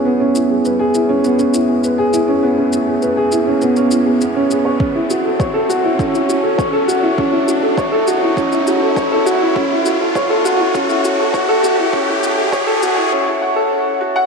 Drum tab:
SH |--x-x-x-xxx-x-x-|--x-x-x-xxx-x-x-|--x-x-x-xxx-x-x-|--x-x-x-xxx-x-x-|
BD |----------------|----------------|o---o---o---o---|o---o---o---o---|

SH |--x-x-x-xxx-x-x-|--x-x-x---------|
BD |o---o---o---o---|o---o-----------|